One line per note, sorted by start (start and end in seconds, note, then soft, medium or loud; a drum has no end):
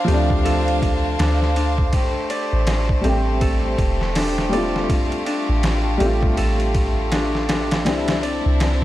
0.00 0.12 C4 medium
0.00 1.19 D4 medium
0.00 1.90 D4 medium
0.00 4.85 C5 medium
0.00 0.44 D5 medium
0.00 1.90 F5 medium
0.05 1.16 D2 medium
0.05 1.90 F3 medium
0.05 1.91 A3 medium
0.05 2.43 G4 medium
0.05 ride medium
0.10 1.92 C4 medium
0.10 1.94 D4 loud
0.30 kick medium
0.45 2.64 A4 medium
0.45 ride medium
0.68 ride soft
0.82 kick medium
0.82 ride medium
1.19 1.91 D2 medium
1.19 1.56 D4 medium
1.19 snare loud
1.19 ride medium
1.42 snare soft
1.56 4.15 D4 medium
1.56 ride medium
1.78 kick medium
1.93 7.82 A3 medium
1.93 7.82 G4 medium
1.93 kick loud
1.93 ride medium
2.30 4.15 D5 medium
2.30 ride medium
2.53 3.02 A1 medium
2.67 snare loud
2.67 ride medium
2.89 kick medium
3.01 4.47 G3 medium
3.01 4.49 A3 medium
3.01 6.04 C4 medium
3.01 ride medium
3.05 3.76 A1 loud
3.05 4.50 C4 medium
3.05 4.51 G4 medium
3.41 5.61 A4 medium
3.41 kick loud
3.41 ride medium
3.78 4.87 E1 medium
3.78 kick loud
3.78 ride medium
4.01 snare soft
4.15 5.26 D4 medium
4.15 snare loud
4.15 open hi-hat medium
4.38 snare medium
4.49 5.95 G3 medium
4.49 5.97 A3 medium
4.49 6.37 D5 medium
4.49 ride medium
4.55 5.98 C4 medium
4.55 5.99 F4 medium
4.76 snare soft
4.90 7.83 F4 medium
4.90 kick loud
4.90 ride medium
5.12 ride soft
5.26 7.11 D4 medium
5.26 ride medium
5.49 5.98 A1 medium
5.63 snare loud
5.63 ride medium
5.98 6.34 A1 medium
5.98 7.82 G3 medium
5.98 7.84 A3 medium
5.98 8.36 G4 medium
5.98 ride medium
6.03 7.84 C4 medium
6.03 7.87 F4 medium
6.23 kick medium
6.37 7.88 A1 medium
6.37 8.57 A4 medium
6.37 ride medium
6.60 ride soft
6.75 kick medium
6.75 ride medium
7.11 7.48 D4 medium
7.11 snare loud
7.11 ride medium
7.35 snare soft
7.48 8.84 D4 medium
7.48 snare loud
7.48 ride medium
7.71 snare loud
7.71 ride medium
7.85 8.41 C2 medium
7.85 8.20 G3 medium
7.85 8.21 C4 medium
7.85 8.84 C4 medium
7.85 8.84 D4 medium
7.85 8.21 D4 medium
7.85 8.84 E4 medium
7.85 8.22 E4 medium
7.85 snare loud
7.85 ride medium
8.08 snare loud
8.08 ride medium
8.23 8.84 D5 medium
8.23 ride medium
8.46 8.84 C2 loud
8.60 snare loud
8.60 ride medium